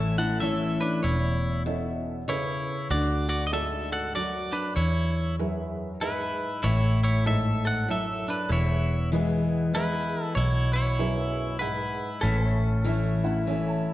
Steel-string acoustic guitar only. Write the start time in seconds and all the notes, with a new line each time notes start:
Already playing: A2 E3 A3 C#4 E4
0.18 C#4 E4
0.40 E3 A3 C#4 E4
1.04 E2
1.66 B2
2.28 C#3
2.90 D3
3.53 G#2
4.15 F#2
4.77 E2
5.39 F#2
6.01 G#2
6.64 A2
7.26 G#2
7.88 F#2
8.51 E2
9.12 E3 G#3 B3 E4
9.74 E3 G#3 B3 E4
10.37 B2
10.99 F#2
11.62 G#2
12.23 A2
12.85 E3 A3 C#4 E4
13.24 C#4 E4
13.46 E3 A3 C#4 E4